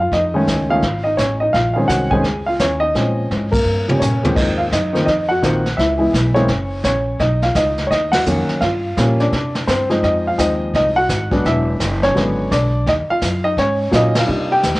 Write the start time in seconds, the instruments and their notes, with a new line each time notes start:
Already playing: upright bass F#2
0.00 grand piano F4 F5
0.12 upright bass F2, grand piano D#4 D#5, brush sweep, kick, snare
0.34 grand piano D#3 G#3 A3 C#4
0.47 upright bass C#2, kick, snare, hi-hat pedal
0.70 grand piano D#3 G#3 A3 C#4 F4 F5
0.82 upright bass G#1, brush sweep, kick, snare
1.04 grand piano D#4 D#5
1.17 upright bass A1, grand piano C#4 C#5, kick, snare, hi-hat pedal
1.40 grand piano D#4 D#5
1.53 upright bass A#1, grand piano F4 F5, brush sweep, kick, snare
1.74 grand piano D#3 G#3 C4 F4 F5
1.78 grand piano C#4
1.88 upright bass C2, grand piano F#4 F#5, kick, snare, hi-hat pedal
2.11 grand piano D#3 G#3 C4 C#4 G#4 G#5, kick
2.24 upright bass C#2, brush sweep, kick, snare
2.47 grand piano F4 F5
2.60 upright bass D#2, grand piano C#4 C#5, kick, snare, hi-hat pedal
2.80 grand piano D#4 D#5
2.95 upright bass A#2, grand piano F3 G#3 C4 C#4, brush sweep, kick, snare
3.31 upright bass G#2, kick, snare, hi-hat pedal
3.52 grand piano A#3 A#4, kick, ride
3.65 upright bass G2
3.88 grand piano F3 G3 A#3 C#4, high tom
4.00 upright bass A#2, grand piano C#4 C#5, hi-hat pedal, mid tom
4.23 grand piano G#2 D#3 F3 A#3 C4, floor tom
4.36 upright bass G#2, grand piano D#4 D#5, brush sweep, kick, snare, crash
4.58 grand piano F4 F5
4.72 upright bass F#2, grand piano D#4 D#5, kick, snare, hi-hat pedal
4.93 grand piano D#3 F3 A#3 C4, snare
5.06 upright bass F2, grand piano D#4 D#5, brush sweep, kick, snare
5.29 grand piano F#4 F#5
5.42 upright bass A#1, grand piano D#3 F3 A#3 C4, kick, snare, hi-hat pedal
5.66 snare
5.77 upright bass C#2, grand piano E4 E5, brush sweep, kick, snare
5.98 grand piano E3 G#3 B3 E4
6.13 upright bass B1, kick, snare, hi-hat pedal
6.35 grand piano E3 G#3 A#3 C4 C#4 C#5, snare
6.48 upright bass F#1, brush sweep, kick, snare
6.84 upright bass A#1, grand piano C#4 C#5, kick, snare, hi-hat pedal
7.19 upright bass B1, grand piano D#4 D#5, brush sweep, kick, snare
7.42 grand piano F4 F5, snare
7.55 upright bass C#2, grand piano D#4 D#5, kick, snare, hi-hat pedal
7.78 snare
7.87 upright bass D#2, grand piano C#5 D#5, kick
7.92 grand piano D#4, brush sweep, snare
8.12 grand piano F#4 F#5, snare, ride
8.26 upright bass F2, grand piano D#3 F#3 A#3 C#4, hi-hat pedal
8.49 muted upright bass stroke, snare
8.61 upright bass G2, grand piano F4 F5, brush sweep, kick, snare
8.97 upright bass A#2, grand piano F3 G3 A#3 C#4, kick, snare, hi-hat pedal
9.20 grand piano D4 D5, snare
9.32 upright bass C3, brush sweep, kick, snare
9.55 snare
9.67 upright bass G2, grand piano C4 C5, kick, snare, hi-hat pedal
9.89 grand piano F3 G#3 C4 D#4, snare
10.03 upright bass F2, grand piano D#4 D#5, brush sweep, kick, snare
10.27 grand piano F4 F5
10.38 upright bass D#2, grand piano F3 G#3 C4 D#4 D#5, kick, snare, hi-hat pedal
10.74 upright bass C2, grand piano D#4 D#5, brush sweep, kick, snare
10.96 grand piano F#4 F#5
11.09 upright bass G#1, kick, snare, hi-hat pedal
11.31 grand piano F#3 G#3 B3 D4, kick, snare
11.45 upright bass E1, grand piano E4 E5, brush sweep, kick, snare
11.80 upright bass F#1, kick, snare, hi-hat pedal
12.03 grand piano C#4 C#5, snare
12.14 upright bass G#1, grand piano D3 F#3 G#3 B3, brush sweep, kick, snare
12.51 upright bass B1, grand piano D4 D5, kick, snare, hi-hat pedal
12.87 upright bass D#2, grand piano D#4 D#5, brush sweep, kick, snare
13.09 grand piano F4 F5, muted upright bass stroke
13.22 upright bass F#2, kick, snare, hi-hat pedal
13.44 grand piano D#4 D#5
13.57 upright bass G#2, grand piano C#4 C#5, brush sweep, kick, snare
13.91 upright bass A#2, grand piano F#3 A#3 C#4 F4, kick, snare, hi-hat pedal
13.95 grand piano D#4 D#5
14.15 grand piano F4 F5, snare, ride
14.26 upright bass C3, grand piano G3 A#3 D4 D#4, brush sweep
14.52 grand piano G4 G5
14.63 upright bass D#2, snare, hi-hat pedal
14.75 upright bass C2, snare